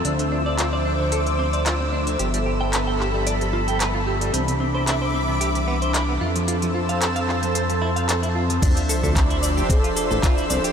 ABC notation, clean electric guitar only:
X:1
M:4/4
L:1/16
Q:"Swing 16ths" 1/4=112
K:Ddor
V:1 name="Clean electric guitar"
D D, D d F d D D, A D, C d F C D D, | G G, G g B g G G, d G, F g B F G G, | C C, C c E c C C, G C, B, c E B, F F, | F F, F f A f F F, c F, E f A E F F, |
D F A A C E d G C F A A F E d G |]